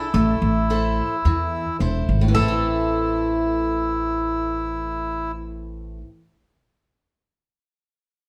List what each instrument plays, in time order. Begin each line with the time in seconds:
Already playing: accordion E4, bouzouki A4
0.14 upright bass A1, steel-string acoustic guitar A3
0.42 upright bass A1
0.70 steel-string acoustic guitar E4 A4 C5
1.25 upright bass E2, steel-string acoustic guitar E3
1.80 upright bass E1, steel-string acoustic guitar E4 A4 C5
2.09 upright bass G#1
2.21 steel-string acoustic guitar A2
2.28 steel-string acoustic guitar E3
2.35 upright bass A1, steel-string acoustic guitar A3, accordion E4, bouzouki A4
2.42 steel-string acoustic guitar C4
2.48 steel-string acoustic guitar E4